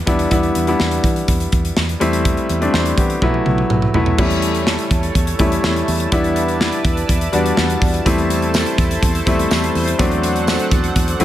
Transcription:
Already playing: grand piano G3 B3 D4 E4 F#4
0.06 fingered electric bass E2, grand piano G3 B3 D4 E4, kick, closed hi-hat
0.19 closed hi-hat
0.31 fingered electric bass E2, grand piano G3 B3 D4 E4, kick, closed hi-hat
0.43 closed hi-hat
0.55 fingered electric bass E2, closed hi-hat
0.67 grand piano G3 B3 D4 E4, closed hi-hat
0.80 fingered electric bass E2, snare
0.91 closed hi-hat
1.04 fingered electric bass E3, kick, closed hi-hat
1.16 closed hi-hat
1.28 fingered electric bass E2, kick, closed hi-hat
1.40 closed hi-hat
1.52 fingered electric bass E2, kick, closed hi-hat
1.65 closed hi-hat
1.77 fingered electric bass E2, snare
1.89 closed hi-hat
2.00 fingered electric bass E2, grand piano G3 A3 C4 E4, closed hi-hat
2.13 closed hi-hat
2.25 kick, closed hi-hat
2.37 closed hi-hat
2.49 fingered electric bass E2, closed hi-hat
2.61 grand piano G3 A3 C4 D4, closed hi-hat
2.74 fingered electric bass E2, grand piano E4 C5, snare
2.86 closed hi-hat
2.98 fingered electric bass E3, grand piano B3 G4, kick, closed hi-hat
3.10 closed hi-hat
3.22 fingered electric bass B1, grand piano F#3 A3 B3 E4, kick, high tom
3.34 high tom
3.46 fingered electric bass B1, mid tom
3.58 mid tom
3.70 fingered electric bass B1, mid tom
3.82 mid tom
3.94 fingered electric bass B1, grand piano F#3 A3 B3 E4, floor tom
4.06 floor tom
4.18 fingered electric bass E2, grand piano G3 A3 C#4 E4, analog synth pad E4 A4 C#5 A5, kick, crash
4.30 closed hi-hat
4.42 closed hi-hat
4.55 closed hi-hat
4.67 snare
4.79 closed hi-hat
4.91 fingered electric bass E2, kick, closed hi-hat
5.03 closed hi-hat
5.15 fingered electric bass E2, kick, closed hi-hat
5.27 closed hi-hat
5.39 fingered electric bass E2, grand piano G3 A3 C#4 E4, kick, closed hi-hat
5.52 closed hi-hat
5.64 fingered electric bass E2, snare
5.76 closed hi-hat
5.88 fingered electric bass E2, open hi-hat
6.00 closed hi-hat
6.12 fingered electric bass E2, grand piano G3 B3 D4 E4, analog synth pad B4 D5, kick, closed hi-hat
6.24 closed hi-hat
6.36 closed hi-hat
6.48 closed hi-hat
6.61 snare
6.72 closed hi-hat
6.85 fingered electric bass E2, kick, closed hi-hat
6.97 closed hi-hat
7.09 fingered electric bass E2, kick, closed hi-hat
7.21 closed hi-hat
7.32 fingered electric bass E2, grand piano G3 B3 D4 F#4, closed hi-hat
7.46 closed hi-hat
7.57 fingered electric bass E2, snare
7.70 closed hi-hat
7.82 fingered electric bass E2, kick, open hi-hat
7.94 closed hi-hat
8.05 fingered electric bass E2, grand piano G3 A3 C4 E4, analog synth pad E4 A4 C5, kick, closed hi-hat, tambourine
8.18 closed hi-hat
8.30 closed hi-hat, tambourine
8.42 closed hi-hat
8.54 snare, tambourine
8.66 closed hi-hat
8.78 fingered electric bass E2, kick, closed hi-hat, tambourine
8.91 closed hi-hat
9.03 fingered electric bass E2, kick, closed hi-hat, tambourine
9.15 closed hi-hat
9.26 fingered electric bass E2, grand piano G3 A3 C4 E4, kick, closed hi-hat, tambourine
9.39 closed hi-hat
9.51 fingered electric bass E2, snare, tambourine
9.64 closed hi-hat
9.75 fingered electric bass E2, open hi-hat, tambourine
9.88 closed hi-hat
9.99 fingered electric bass E2, grand piano F#3 A3 C4 D4, analog synth pad D4 A4 F#5, kick, closed hi-hat, tambourine
10.11 closed hi-hat
10.23 closed hi-hat, tambourine
10.36 closed hi-hat
10.47 snare, tambourine
10.59 closed hi-hat
10.71 fingered electric bass E2, kick, closed hi-hat, tambourine
10.84 closed hi-hat
10.96 fingered electric bass E2, kick, closed hi-hat, tambourine
11.08 closed hi-hat
11.20 fingered electric bass E2, grand piano F#3 A3 C4 E4, closed hi-hat, tambourine

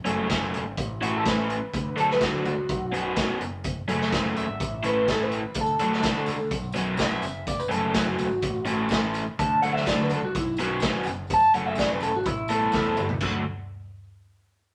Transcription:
0.05 picked electric bass F#1, overdriven electric guitar C#3 F#3 A3 C#4, closed hi-hat
0.28 overdriven electric guitar C#3 F#3 A3 C#4, kick, snare, closed hi-hat
0.40 picked electric bass F#1
0.53 picked electric bass E1, closed hi-hat
0.65 picked electric bass G#1
0.77 picked electric bass A1, kick, closed hi-hat
1.01 overdriven electric guitar E3 A3 C#4 E4, clean electric guitar F#4, closed hi-hat
1.17 clean electric guitar A4
1.25 overdriven electric guitar E3 A3 C#4 E4, clean electric guitar B4, kick, snare, closed hi-hat
1.50 closed hi-hat
1.74 picked electric bass D2, kick, closed hi-hat
1.96 picked electric bass D2, overdriven electric guitar D3 F#3 A3 D4, clean electric guitar A4, closed hi-hat
2.10 clean electric guitar B4, snare
2.21 overdriven electric guitar D3 F#3 A3 D4, clean electric guitar F#4, kick, snare, closed hi-hat
2.33 picked electric bass D2
2.45 picked electric bass C#2, clean electric guitar F#4, closed hi-hat
2.58 picked electric bass C#2
2.69 picked electric bass B1, kick, closed hi-hat
2.92 overdriven electric guitar B2 F#3 B3 C#4, closed hi-hat
3.16 overdriven electric guitar B2 F#3 B3 C#4, kick, snare, closed hi-hat
3.40 picked electric bass F#1, closed hi-hat
3.64 kick, closed hi-hat
3.88 picked electric bass F#1, overdriven electric guitar C#3 F#3 A3 C#4, closed hi-hat
4.01 snare
4.12 overdriven electric guitar C#3 F#3 A3 C#4, kick, snare, closed hi-hat
4.23 picked electric bass F#1
4.36 picked electric bass E1, clean electric guitar E5, closed hi-hat
4.49 picked electric bass G#1
4.60 picked electric bass A1, kick, closed hi-hat
4.83 overdriven electric guitar E3 A3 C#4 E4, clean electric guitar B4, closed hi-hat
5.08 overdriven electric guitar E3 A3 C#4 E4, clean electric guitar A4, kick, snare, closed hi-hat
5.23 clean electric guitar B4
5.32 closed hi-hat
5.54 picked electric bass D2, kick, closed hi-hat
5.61 clean electric guitar A4
5.66 tambourine
5.79 picked electric bass D2, overdriven electric guitar D3 F#3 A3 D4, closed hi-hat, tambourine
5.92 snare
6.03 overdriven electric guitar D3 F#3 A3 D4, kick, snare, closed hi-hat, tambourine
6.16 picked electric bass D2
6.26 picked electric bass C#2, closed hi-hat, tambourine
6.38 picked electric bass D2, tambourine
6.51 picked electric bass B1, kick, closed hi-hat
6.62 tambourine
6.72 overdriven electric guitar B2 F#3 B3 C#4, closed hi-hat, tambourine
6.86 tambourine
6.97 overdriven electric guitar B2 F#3 B3 C#4, kick, snare, closed hi-hat, tambourine
7.01 clean electric guitar E5
7.22 picked electric bass F#1, closed hi-hat, tambourine
7.47 clean electric guitar D5, kick, closed hi-hat
7.59 clean electric guitar B4, tambourine
7.69 picked electric bass F#1, overdriven electric guitar C#3 F#3 A3 C#4, clean electric guitar A4, closed hi-hat
7.94 overdriven electric guitar C#3 F#3 A3 C#4, clean electric guitar F#4, kick, snare, closed hi-hat, tambourine
8.05 picked electric bass F#1
8.18 picked electric bass E1, closed hi-hat, tambourine
8.30 picked electric bass G#1
8.42 picked electric bass A1, kick, closed hi-hat
8.54 tambourine
8.65 overdriven electric guitar E3 A3 C#4 E4, closed hi-hat, tambourine
8.78 tambourine
8.89 overdriven electric guitar E3 A3 C#4 E4, kick, snare, closed hi-hat, tambourine
9.14 closed hi-hat, tambourine
9.39 picked electric bass D2, clean electric guitar A5, kick, closed hi-hat
9.62 picked electric bass D2, overdriven electric guitar D3 F#3 A3 D4, clean electric guitar F#5, closed hi-hat, tambourine
9.74 clean electric guitar E5, snare
9.86 overdriven electric guitar D3 F#3 A3 D4, clean electric guitar D5, kick, snare, closed hi-hat, tambourine
9.98 picked electric bass D2
10.03 clean electric guitar B4
10.10 picked electric bass C#2, clean electric guitar A4, closed hi-hat, tambourine
10.22 picked electric bass C2, clean electric guitar F#4
10.35 picked electric bass B1, clean electric guitar E4, kick, closed hi-hat
10.46 tambourine
10.57 overdriven electric guitar B2 F#3 B3 C#4, clean electric guitar F#4, closed hi-hat, tambourine
10.69 tambourine
10.80 overdriven electric guitar B2 F#3, kick, snare, closed hi-hat, tambourine
10.84 overdriven electric guitar B3 C#4
11.03 picked electric bass F#1, closed hi-hat, tambourine
11.27 kick, closed hi-hat, tambourine
11.34 clean electric guitar A5
11.40 tambourine
11.52 picked electric bass F#1, overdriven electric guitar C#3 F#3 A3 C#4, clean electric guitar F#5, closed hi-hat, tambourine
11.64 clean electric guitar E5, tambourine
11.75 overdriven electric guitar C#3 F#3 A3 C#4, clean electric guitar D5, kick, snare, closed hi-hat, tambourine
11.89 picked electric bass F#1, clean electric guitar B4
12.00 picked electric bass E1, clean electric guitar A4, closed hi-hat, tambourine
12.12 picked electric bass G#1, tambourine
12.16 clean electric guitar F#4
12.24 picked electric bass A1, clean electric guitar E4, kick, closed hi-hat, tambourine
12.48 overdriven electric guitar A3 B3 E4 A4, clean electric guitar A4, closed hi-hat, tambourine
12.60 tambourine
12.72 picked electric bass E2, overdriven electric guitar A3 B3 E4 A4, kick, snare, tambourine
12.85 tambourine
12.97 picked electric bass D2, mid tom, tambourine
13.09 floor tom, tambourine
13.21 picked electric bass D2, overdriven electric guitar D3 F#3 A3 D4 F#4, kick, crash, tambourine

